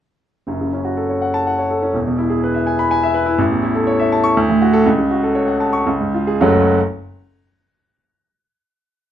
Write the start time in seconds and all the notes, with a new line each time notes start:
0.47 F#1 F#2
0.61 C#3
0.73 C#4
0.85 F#4
0.97 A4
1.09 C#5
1.22 F#5
1.34 A5
1.47 F#5
1.59 C#5
1.71 A4
1.82 C#4
1.94 E1 E2
2.07 B2
2.18 E4
2.30 G#4
2.44 B4
2.54 E5
2.67 G#5
2.79 B5
2.91 G#5
3.03 E5
3.14 B4
3.26 E4
3.39 A1
3.51 E2
3.63 E4
3.75 A4
3.87 C#5
4.00 E5
4.12 A5
4.24 C#6
4.37 D2
4.49 A2
4.62 F#4
4.73 A4
4.86 C#2
4.98 C#3
5.11 F#4
5.23 A4
5.35 C#5
5.47 F#5
5.60 A5
5.73 C#6
5.86 C#2
6.01 G#2
6.14 F4
6.27 G#4
6.41 F#1 C#2 F#3 A3 C#4 F#4